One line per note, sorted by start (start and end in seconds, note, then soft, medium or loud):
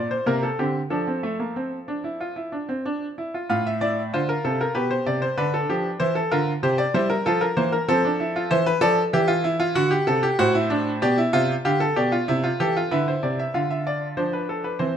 0.00 0.15 A#2 medium
0.00 0.23 C4 medium
0.00 0.11 D5 medium
0.11 0.27 C5 medium
0.26 0.47 C3 medium
0.26 0.46 A#3 medium
0.26 0.43 A#4 medium
0.43 0.59 A4 medium
0.59 0.79 D3 medium
0.59 0.79 C4 medium
0.59 0.79 G4 medium
0.90 3.13 F3 medium
0.90 1.07 D4 medium
0.90 3.12 A4 medium
1.07 1.23 C4 medium
1.23 1.39 A3 medium
1.39 1.55 A#3 medium
1.56 1.76 C4 medium
1.88 2.04 D4 medium
2.04 2.20 E4 medium
2.20 2.36 F4 medium
2.36 2.52 E4 medium
2.52 2.68 D4 medium
2.69 2.84 C4 medium
2.86 3.05 D4 medium
3.18 3.33 E4 medium
3.34 3.48 F4 medium
3.49 4.11 A2 medium
3.49 3.69 F4 medium
3.49 3.65 F5 medium
3.67 3.81 E5 medium
3.81 4.01 E4 medium
3.81 4.01 D5 medium
4.13 4.33 D3 medium
4.13 4.74 F4 medium
4.13 4.28 C5 medium
4.29 4.44 A#4 medium
4.44 4.64 C3 medium
4.44 4.59 A4 medium
4.61 4.75 A#4 medium
4.75 4.95 B2 medium
4.75 5.36 G4 medium
4.75 4.90 B4 medium
4.91 5.06 C5 medium
5.06 5.26 C3 medium
5.06 5.22 D5 medium
5.22 5.37 C5 medium
5.37 5.57 D3 medium
5.37 5.99 D4 medium
5.37 5.53 B4 medium
5.54 5.69 A4 medium
5.69 5.89 F3 medium
5.69 5.89 G4 medium
6.00 6.20 E3 medium
6.00 6.20 E4 medium
6.00 6.15 C5 medium
6.15 6.31 A4 medium
6.31 6.51 D3 medium
6.31 6.51 F4 medium
6.31 6.51 A#4 medium
6.63 6.82 C3 medium
6.63 6.83 G4 medium
6.63 6.79 C5 medium
6.78 6.94 D5 medium
6.94 7.14 G3 medium
6.94 7.14 E4 medium
6.94 7.10 C5 medium
7.10 7.25 A#4 medium
7.26 7.46 F3 medium
7.26 7.46 F4 medium
7.26 7.41 A4 medium
7.41 7.57 A#4 medium
7.57 7.76 E3 medium
7.57 7.77 A#3 medium
7.57 7.72 C5 medium
7.72 7.88 A#4 medium
7.88 8.49 F3 medium
7.88 8.04 C4 medium
7.88 8.50 A4 loud
8.04 8.20 D4 medium
8.20 8.35 E4 medium
8.36 8.51 F4 medium
8.51 8.70 E3 medium
8.51 8.66 C5 loud
8.51 8.70 E5 medium
8.66 8.82 B4 loud
8.81 9.01 F3 medium
8.81 9.01 A4 loud
8.81 9.01 D5 medium
9.13 9.74 E3 medium
9.13 9.29 G4 loud
9.13 9.74 E5 medium
9.28 9.44 F4 loud
9.44 9.60 E4 loud
9.60 9.75 F4 loud
9.75 9.95 D3 medium
9.75 9.91 F#4 loud
9.75 10.37 F#5 medium
9.91 10.07 G4 medium
10.07 10.27 C3 medium
10.07 10.23 A4 loud
10.23 10.39 G4 medium
10.39 11.00 A2 medium
10.39 10.54 F#4 loud
10.39 11.01 C5 medium
10.54 10.70 E4 loud
10.70 10.90 D4 medium
11.02 11.22 B2 medium
11.02 11.18 G4 loud
11.02 11.22 D5 medium
11.18 11.33 E4 medium
11.33 11.53 C3 medium
11.33 11.53 F4 loud
11.33 11.53 E5 medium
11.65 11.85 D3 medium
11.65 11.81 G4 medium
11.65 11.85 F5 medium
11.80 11.96 A4 medium
11.96 12.16 B2 medium
11.96 12.12 G4 medium
11.96 12.16 D5 medium
12.12 12.28 F4 medium
12.28 12.48 C3 medium
12.28 12.44 E4 medium
12.28 12.48 E5 medium
12.44 12.59 F4 medium
12.60 12.80 E3 medium
12.60 12.75 G4 medium
12.60 12.80 A4 medium
12.76 12.92 F4 medium
12.91 13.11 D3 medium
12.91 13.53 E4 medium
12.91 13.07 B4 medium
13.08 13.23 C5 medium
13.23 13.43 C3 medium
13.23 13.39 D5 medium
13.39 13.55 E5 medium
13.54 14.16 D3 medium
13.54 14.16 F4 medium
13.54 13.70 F5 medium
13.70 13.86 E5 medium
13.87 14.06 D5 medium
14.17 14.78 F3 medium
14.17 14.78 D4 medium
14.17 14.33 C5 medium
14.33 14.49 B4 medium
14.49 14.65 A4 medium
14.64 14.80 B4 medium
14.79 14.97 E3 medium
14.79 14.97 C4 medium
14.79 14.95 C5 medium